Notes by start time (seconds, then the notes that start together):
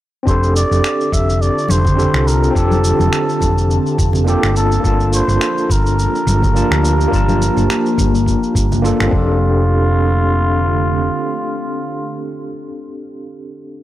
0.23 F1 D3 C4 D4 F4 A5, kick
0.28 G4 A4 C5, shaker
0.43 shaker
0.56 D5, shaker
0.71 F1, shaker
0.84 finger snap, shaker
1.01 shaker
1.12 F1 E5, kick, shaker
1.29 shaker
1.42 D5, shaker
1.58 shaker
1.69 F1 C5, high conga, shaker
1.85 kick, low conga, shaker
1.95 C4 D4 G4 A4, shaker
2.13 C2, finger snap, shaker
2.27 A#4, shaker
2.44 shaker
2.51 C4 D4
2.55 F1 G4 A4, kick, shaker
2.71 high conga, shaker
2.84 shaker
2.99 F1, high conga, shaker
3.13 finger snap, shaker
3.29 shaker
3.40 F1, kick, high conga, shaker
3.58 shaker
3.71 shaker
3.86 shaker
3.98 F1, kick, shaker
4.13 low conga, shaker
4.24 A#3 D4 F4 G4 A4, shaker
4.43 G1, finger snap, shaker
4.55 F3 A#3 G4 A4, shaker
4.72 shaker
4.80 A#3 D4, kick
4.84 G1 F4 A5, shaker
5.00 shaker
5.13 C5, shaker
5.28 G1, shaker
5.41 finger snap, shaker
5.58 shaker
5.70 G1 A#4, kick, shaker
5.86 shaker
5.99 shaker
6.15 shaker
6.27 G1, high conga, shaker
6.42 kick, low conga, shaker
6.54 A#3 D4 F4 A5, shaker
6.71 D2, finger snap, shaker
6.85 shaker
7.01 shaker
7.08 A#3 D4
7.12 G1 F4 A5, kick, shaker
7.29 high conga, shaker
7.42 shaker
7.57 G1, high conga, shaker
7.70 finger snap, shaker
7.86 shaker
7.98 G1, kick, high conga, shaker
8.15 shaker
8.26 kick, shaker
8.43 shaker
8.55 G1, kick, shaker
8.72 low conga, shaker
8.82 A#3 D4 F4 A4, shaker
9.00 G1, finger snap, shaker
9.07 C4 D4
9.12 F1 D3 A3 C4 F4 G4, kick
9.18 A4